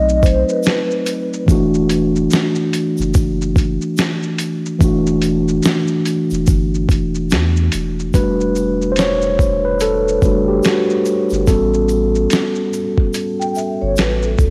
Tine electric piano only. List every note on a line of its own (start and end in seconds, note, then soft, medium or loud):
0.00 1.43 F#3 medium
0.00 1.44 A3 medium
0.00 1.45 C4 medium
0.00 1.46 D#4 medium
1.46 4.76 E3 medium
1.46 4.77 A3 medium
1.46 4.78 D4 medium
1.52 4.79 F#4 medium
4.79 8.09 E3 medium
4.79 8.10 A3 medium
4.79 8.11 D4 medium
4.84 8.12 F#4 medium
8.14 9.35 G3 soft
8.14 9.36 A3 soft
8.14 9.36 D4 soft
8.14 9.36 F#4 medium
8.14 8.95 B4 medium
8.92 8.98 C5 medium
8.99 9.67 C#5 loud
9.65 9.82 B4 medium
9.82 10.50 A4 medium
10.24 10.61 G3 soft
10.24 10.61 A3 soft
10.24 10.62 D4 soft
10.24 10.62 F#4 medium
10.48 10.65 G4 medium
10.65 11.48 F#4 medium
11.48 12.69 G3 medium
11.48 12.70 B3 soft
11.48 12.70 C#4 soft
11.48 12.70 F#4 medium
11.48 13.11 A4 medium